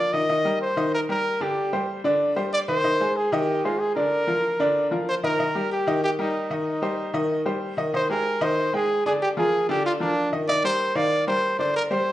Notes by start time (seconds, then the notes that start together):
Already playing: D5
0.13 D#3 D#4 D#5
0.29 D#3 D#4 D#5
0.45 G3 G4 A#4
0.61 C5
0.77 D#3 D#4 D#5
0.94 A#4
1.09 G3 G4 A#4
1.40 D3 D4 G4 D5
1.73 G3 G4 C5
2.04 D3 D4 D5
2.36 G3 G4 C5
2.53 D5
2.68 D#3 D#4 C5 D#5
2.84 D#3 D#4 D#5
3.01 G#3 G#4 C5
3.16 G#4
3.32 D#3 D#4 G4 D#5
3.65 G#3 F4 G#4 C5
3.80 G#4
3.95 D3 D4 A#4 D5
4.27 F3 F4 A#4
4.60 D3 D4 D5
4.91 F3 F4 A#4
5.09 C5
5.23 D#3 D#4 A#4 D#5
5.39 D#3 D#4 D#5
5.55 G3 G4 A#4
5.72 G4
5.87 D#3 D#4 D#5
6.04 G4
6.19 G3 D#4 G4 A#4
6.50 D#3 D#4 D#5
6.82 G3 G4 C5
7.14 D#3 D#4 D#5
7.46 G3 G4 C5
7.77 D#3 D#4 D#5
7.93 D#3 D#4 C5 D#5
8.10 G#3 G4 G#4 A#4
8.41 D#3 D#4 C5 D#5
8.73 G#3 G#4 G5
9.06 D3 D4 G#4 D5
9.22 G4
9.37 F3 F4 G#4 A#4
9.69 D3 D4 G4 D5
9.86 F4
10.00 F3 D4 F4 A#4
10.32 D#3 D#4 D#5
10.48 D#3 D#4 D5 D#5
10.64 G3 G4 A#4 C5
10.95 D#3 D#4 D5 F5
11.27 G3 G4 A#4 C5
11.59 D3 D4 C5 D5
11.76 A#4
11.91 G3 G4 C5